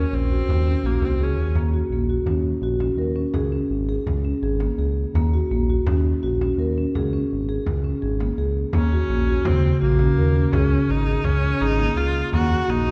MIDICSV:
0, 0, Header, 1, 5, 480
1, 0, Start_track
1, 0, Tempo, 358637
1, 2093, Time_signature, 5, 2, 24, 8
1, 17280, End_track
2, 0, Start_track
2, 0, Title_t, "Marimba"
2, 0, Program_c, 0, 12
2, 0, Note_on_c, 0, 61, 73
2, 274, Note_off_c, 0, 61, 0
2, 412, Note_on_c, 0, 66, 66
2, 743, Note_off_c, 0, 66, 0
2, 895, Note_on_c, 0, 61, 68
2, 1060, Note_off_c, 0, 61, 0
2, 1143, Note_on_c, 0, 66, 77
2, 1305, Note_off_c, 0, 66, 0
2, 1379, Note_on_c, 0, 58, 62
2, 1542, Note_off_c, 0, 58, 0
2, 1617, Note_on_c, 0, 68, 72
2, 1945, Note_off_c, 0, 68, 0
2, 2091, Note_on_c, 0, 58, 74
2, 2256, Note_off_c, 0, 58, 0
2, 2324, Note_on_c, 0, 66, 67
2, 2491, Note_off_c, 0, 66, 0
2, 2577, Note_on_c, 0, 58, 74
2, 2739, Note_off_c, 0, 58, 0
2, 2805, Note_on_c, 0, 66, 70
2, 2971, Note_off_c, 0, 66, 0
2, 3033, Note_on_c, 0, 61, 61
2, 3368, Note_off_c, 0, 61, 0
2, 3523, Note_on_c, 0, 66, 80
2, 3689, Note_off_c, 0, 66, 0
2, 3760, Note_on_c, 0, 61, 59
2, 3927, Note_off_c, 0, 61, 0
2, 3993, Note_on_c, 0, 70, 73
2, 4163, Note_off_c, 0, 70, 0
2, 4226, Note_on_c, 0, 61, 78
2, 4398, Note_off_c, 0, 61, 0
2, 4466, Note_on_c, 0, 68, 80
2, 4638, Note_off_c, 0, 68, 0
2, 4718, Note_on_c, 0, 61, 80
2, 5051, Note_off_c, 0, 61, 0
2, 5203, Note_on_c, 0, 68, 79
2, 5535, Note_off_c, 0, 68, 0
2, 5684, Note_on_c, 0, 61, 70
2, 5850, Note_off_c, 0, 61, 0
2, 5929, Note_on_c, 0, 68, 87
2, 6094, Note_off_c, 0, 68, 0
2, 6172, Note_on_c, 0, 58, 67
2, 6336, Note_off_c, 0, 58, 0
2, 6407, Note_on_c, 0, 68, 71
2, 6738, Note_off_c, 0, 68, 0
2, 6895, Note_on_c, 0, 58, 82
2, 7058, Note_off_c, 0, 58, 0
2, 7142, Note_on_c, 0, 66, 77
2, 7303, Note_off_c, 0, 66, 0
2, 7379, Note_on_c, 0, 58, 85
2, 7542, Note_off_c, 0, 58, 0
2, 7623, Note_on_c, 0, 66, 71
2, 7784, Note_off_c, 0, 66, 0
2, 7855, Note_on_c, 0, 61, 70
2, 8185, Note_off_c, 0, 61, 0
2, 8339, Note_on_c, 0, 66, 87
2, 8503, Note_off_c, 0, 66, 0
2, 8587, Note_on_c, 0, 61, 69
2, 8748, Note_off_c, 0, 61, 0
2, 8817, Note_on_c, 0, 70, 74
2, 8982, Note_off_c, 0, 70, 0
2, 9072, Note_on_c, 0, 61, 77
2, 9232, Note_off_c, 0, 61, 0
2, 9307, Note_on_c, 0, 68, 83
2, 9469, Note_off_c, 0, 68, 0
2, 9548, Note_on_c, 0, 61, 74
2, 9876, Note_off_c, 0, 61, 0
2, 10022, Note_on_c, 0, 68, 78
2, 10352, Note_off_c, 0, 68, 0
2, 10495, Note_on_c, 0, 61, 67
2, 10663, Note_off_c, 0, 61, 0
2, 10738, Note_on_c, 0, 68, 81
2, 10905, Note_off_c, 0, 68, 0
2, 10979, Note_on_c, 0, 58, 64
2, 11146, Note_off_c, 0, 58, 0
2, 11218, Note_on_c, 0, 68, 76
2, 11551, Note_off_c, 0, 68, 0
2, 11700, Note_on_c, 0, 58, 87
2, 11868, Note_off_c, 0, 58, 0
2, 11942, Note_on_c, 0, 66, 73
2, 12109, Note_off_c, 0, 66, 0
2, 12178, Note_on_c, 0, 58, 74
2, 12347, Note_off_c, 0, 58, 0
2, 12417, Note_on_c, 0, 66, 71
2, 12586, Note_off_c, 0, 66, 0
2, 12665, Note_on_c, 0, 49, 74
2, 12997, Note_off_c, 0, 49, 0
2, 13134, Note_on_c, 0, 66, 82
2, 13304, Note_off_c, 0, 66, 0
2, 13387, Note_on_c, 0, 61, 66
2, 13553, Note_off_c, 0, 61, 0
2, 13615, Note_on_c, 0, 70, 77
2, 13785, Note_off_c, 0, 70, 0
2, 13869, Note_on_c, 0, 61, 70
2, 14034, Note_off_c, 0, 61, 0
2, 14102, Note_on_c, 0, 68, 90
2, 14270, Note_off_c, 0, 68, 0
2, 14330, Note_on_c, 0, 61, 74
2, 14667, Note_off_c, 0, 61, 0
2, 14818, Note_on_c, 0, 68, 76
2, 15152, Note_off_c, 0, 68, 0
2, 15299, Note_on_c, 0, 61, 69
2, 15468, Note_off_c, 0, 61, 0
2, 15547, Note_on_c, 0, 68, 94
2, 15713, Note_off_c, 0, 68, 0
2, 15784, Note_on_c, 0, 58, 67
2, 15951, Note_off_c, 0, 58, 0
2, 16029, Note_on_c, 0, 68, 73
2, 16359, Note_off_c, 0, 68, 0
2, 16502, Note_on_c, 0, 58, 94
2, 16669, Note_off_c, 0, 58, 0
2, 16747, Note_on_c, 0, 66, 77
2, 16912, Note_off_c, 0, 66, 0
2, 16974, Note_on_c, 0, 58, 76
2, 17144, Note_off_c, 0, 58, 0
2, 17227, Note_on_c, 0, 66, 73
2, 17280, Note_off_c, 0, 66, 0
2, 17280, End_track
3, 0, Start_track
3, 0, Title_t, "Viola"
3, 0, Program_c, 1, 41
3, 0, Note_on_c, 1, 61, 73
3, 185, Note_on_c, 1, 60, 91
3, 205, Note_off_c, 1, 61, 0
3, 1151, Note_on_c, 1, 58, 82
3, 1171, Note_off_c, 1, 60, 0
3, 1398, Note_on_c, 1, 60, 74
3, 1418, Note_off_c, 1, 58, 0
3, 1647, Note_on_c, 1, 61, 65
3, 1667, Note_off_c, 1, 60, 0
3, 2109, Note_off_c, 1, 61, 0
3, 11708, Note_on_c, 1, 61, 81
3, 12651, Note_on_c, 1, 60, 81
3, 12671, Note_off_c, 1, 61, 0
3, 13122, Note_off_c, 1, 60, 0
3, 13130, Note_on_c, 1, 58, 89
3, 14085, Note_on_c, 1, 61, 79
3, 14105, Note_off_c, 1, 58, 0
3, 14592, Note_on_c, 1, 63, 88
3, 14612, Note_off_c, 1, 61, 0
3, 15051, Note_on_c, 1, 61, 99
3, 15071, Note_off_c, 1, 63, 0
3, 15539, Note_on_c, 1, 63, 106
3, 15559, Note_off_c, 1, 61, 0
3, 16021, Note_on_c, 1, 65, 98
3, 16041, Note_off_c, 1, 63, 0
3, 16493, Note_off_c, 1, 65, 0
3, 16501, Note_on_c, 1, 66, 91
3, 16996, Note_on_c, 1, 63, 110
3, 17016, Note_off_c, 1, 66, 0
3, 17280, Note_off_c, 1, 63, 0
3, 17280, End_track
4, 0, Start_track
4, 0, Title_t, "Analog synth bass"
4, 0, Program_c, 2, 38
4, 174, Note_on_c, 2, 34, 88
4, 540, Note_off_c, 2, 34, 0
4, 650, Note_on_c, 2, 39, 106
4, 1017, Note_off_c, 2, 39, 0
4, 1120, Note_on_c, 2, 34, 98
4, 1308, Note_off_c, 2, 34, 0
4, 1363, Note_on_c, 2, 36, 81
4, 1584, Note_off_c, 2, 36, 0
4, 1608, Note_on_c, 2, 37, 87
4, 1822, Note_off_c, 2, 37, 0
4, 1830, Note_on_c, 2, 39, 82
4, 2056, Note_off_c, 2, 39, 0
4, 2068, Note_on_c, 2, 39, 99
4, 2441, Note_off_c, 2, 39, 0
4, 2547, Note_on_c, 2, 34, 90
4, 2919, Note_off_c, 2, 34, 0
4, 3021, Note_on_c, 2, 39, 97
4, 3396, Note_off_c, 2, 39, 0
4, 3503, Note_on_c, 2, 34, 110
4, 3877, Note_off_c, 2, 34, 0
4, 3975, Note_on_c, 2, 39, 81
4, 4351, Note_off_c, 2, 39, 0
4, 4466, Note_on_c, 2, 37, 98
4, 4839, Note_off_c, 2, 37, 0
4, 4946, Note_on_c, 2, 32, 92
4, 5319, Note_off_c, 2, 32, 0
4, 5436, Note_on_c, 2, 37, 93
4, 5806, Note_off_c, 2, 37, 0
4, 5919, Note_on_c, 2, 32, 106
4, 6288, Note_off_c, 2, 32, 0
4, 6398, Note_on_c, 2, 37, 85
4, 6767, Note_off_c, 2, 37, 0
4, 6882, Note_on_c, 2, 39, 102
4, 7251, Note_off_c, 2, 39, 0
4, 7373, Note_on_c, 2, 34, 92
4, 7738, Note_off_c, 2, 34, 0
4, 7851, Note_on_c, 2, 39, 97
4, 8218, Note_off_c, 2, 39, 0
4, 8343, Note_on_c, 2, 34, 100
4, 8705, Note_off_c, 2, 34, 0
4, 8808, Note_on_c, 2, 39, 89
4, 9177, Note_off_c, 2, 39, 0
4, 9306, Note_on_c, 2, 37, 99
4, 9669, Note_off_c, 2, 37, 0
4, 9803, Note_on_c, 2, 32, 85
4, 10160, Note_off_c, 2, 32, 0
4, 10271, Note_on_c, 2, 37, 103
4, 10633, Note_off_c, 2, 37, 0
4, 10742, Note_on_c, 2, 32, 111
4, 11108, Note_off_c, 2, 32, 0
4, 11213, Note_on_c, 2, 37, 83
4, 11583, Note_off_c, 2, 37, 0
4, 11691, Note_on_c, 2, 39, 93
4, 12062, Note_off_c, 2, 39, 0
4, 12167, Note_on_c, 2, 34, 88
4, 12540, Note_off_c, 2, 34, 0
4, 12657, Note_on_c, 2, 39, 89
4, 13027, Note_off_c, 2, 39, 0
4, 13147, Note_on_c, 2, 34, 113
4, 13513, Note_off_c, 2, 34, 0
4, 13628, Note_on_c, 2, 39, 94
4, 13994, Note_off_c, 2, 39, 0
4, 14095, Note_on_c, 2, 37, 110
4, 14466, Note_off_c, 2, 37, 0
4, 14577, Note_on_c, 2, 32, 90
4, 14947, Note_off_c, 2, 32, 0
4, 15065, Note_on_c, 2, 37, 99
4, 15432, Note_off_c, 2, 37, 0
4, 15536, Note_on_c, 2, 32, 115
4, 15906, Note_off_c, 2, 32, 0
4, 16007, Note_on_c, 2, 37, 94
4, 16380, Note_off_c, 2, 37, 0
4, 16497, Note_on_c, 2, 39, 106
4, 16866, Note_off_c, 2, 39, 0
4, 16978, Note_on_c, 2, 34, 92
4, 17280, Note_off_c, 2, 34, 0
4, 17280, End_track
5, 0, Start_track
5, 0, Title_t, "Frame drum"
5, 665, Note_on_c, 9, 64, 53
5, 799, Note_off_c, 9, 64, 0
5, 898, Note_on_c, 9, 64, 16
5, 1032, Note_off_c, 9, 64, 0
5, 1370, Note_on_c, 9, 64, 42
5, 1504, Note_off_c, 9, 64, 0
5, 2078, Note_on_c, 9, 64, 51
5, 2212, Note_off_c, 9, 64, 0
5, 3032, Note_on_c, 9, 64, 50
5, 3165, Note_off_c, 9, 64, 0
5, 3750, Note_on_c, 9, 64, 43
5, 3884, Note_off_c, 9, 64, 0
5, 4466, Note_on_c, 9, 64, 53
5, 4600, Note_off_c, 9, 64, 0
5, 5443, Note_on_c, 9, 64, 55
5, 5577, Note_off_c, 9, 64, 0
5, 6159, Note_on_c, 9, 64, 48
5, 6293, Note_off_c, 9, 64, 0
5, 6895, Note_on_c, 9, 64, 56
5, 7029, Note_off_c, 9, 64, 0
5, 7849, Note_on_c, 9, 64, 65
5, 7983, Note_off_c, 9, 64, 0
5, 8583, Note_on_c, 9, 64, 46
5, 8717, Note_off_c, 9, 64, 0
5, 9304, Note_on_c, 9, 64, 46
5, 9438, Note_off_c, 9, 64, 0
5, 10019, Note_on_c, 9, 64, 20
5, 10153, Note_off_c, 9, 64, 0
5, 10257, Note_on_c, 9, 64, 54
5, 10391, Note_off_c, 9, 64, 0
5, 10504, Note_on_c, 9, 64, 20
5, 10637, Note_off_c, 9, 64, 0
5, 10981, Note_on_c, 9, 64, 51
5, 11114, Note_off_c, 9, 64, 0
5, 11463, Note_on_c, 9, 64, 20
5, 11597, Note_off_c, 9, 64, 0
5, 11684, Note_on_c, 9, 64, 62
5, 11818, Note_off_c, 9, 64, 0
5, 12649, Note_on_c, 9, 64, 70
5, 12783, Note_off_c, 9, 64, 0
5, 13370, Note_on_c, 9, 64, 49
5, 13504, Note_off_c, 9, 64, 0
5, 14093, Note_on_c, 9, 64, 62
5, 14227, Note_off_c, 9, 64, 0
5, 15045, Note_on_c, 9, 64, 58
5, 15179, Note_off_c, 9, 64, 0
5, 15780, Note_on_c, 9, 64, 43
5, 15914, Note_off_c, 9, 64, 0
5, 16508, Note_on_c, 9, 64, 59
5, 16642, Note_off_c, 9, 64, 0
5, 17280, End_track
0, 0, End_of_file